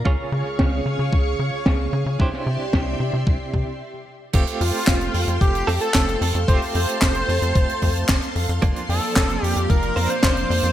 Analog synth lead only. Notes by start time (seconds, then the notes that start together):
4.61 F4
5.41 G4
5.81 A4
6.22 A4
6.48 C5
6.75 C5
8.89 A4
9.45 G4
9.70 A#4
10.10 C5
10.50 C5